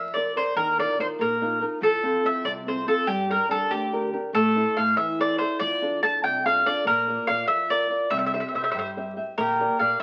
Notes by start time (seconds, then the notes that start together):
Already playing: F2 F3 E5
0.14 A#4 C5 D5
0.36 A#4 C5 D5
0.56 D#2 D#3 A#4
0.78 D#4 F4 A#4 D5
0.99 D#3 D#4 F4 A#4 C5
1.19 A#1 A#3 A#4
1.41 D#4 F4 A#4
1.61 D#4 F4 A#4
1.81 F2 F3 A4
2.03 C4 F4 A4
2.24 F3 C4 F4 A4 E5
2.44 C2 C3 D5
2.67 C4 F4 A4 C5
2.87 C4 F4 A4
3.07 G2 G3 G4
3.29 D4 G4 A#4
3.48 G3 D4 G4 A4
3.70 D2 D3 G4
3.93 D4 G4 A#4
4.13 D4 G4 A#4
4.33 A2 A3 A4
4.56 E4 A4 C5
4.76 A2 E4 A4 C5 F5
4.96 E2 E3 E5
5.19 E4 A4 C5 D5
5.38 E4 A4 C5
5.60 F2 F3 D5
5.82 D4 F4 A4
6.02 F3 D4 F4 A4 A5
6.22 C2 C3 G5
6.45 D4 F4 A4 F5
6.65 D4 F4 A4 D5
6.85 A#1 A#3 A#4
7.07 F4 A#4 D5
7.27 A#2 F4 A#4 D5 F5
7.47 F2 F3 E5
7.70 F4 A#4 D5
7.90 F4 A#4 D5
8.10 C2 C4 E5
8.19 E5
8.26 E5
8.34 G4 C5 E5
8.40 E5
8.48 C5 E5
8.54 C3 G4 C5 E5
8.64 C5 E5
8.72 G2 G3 C5 E5
8.79 C5 E5
8.97 G4 C5 E5
9.16 G4 C5 E5
9.38 A#1 A#3 G4 A#4
9.60 G4 A#4 D5
9.79 A#2 G4 A#4 D5 F5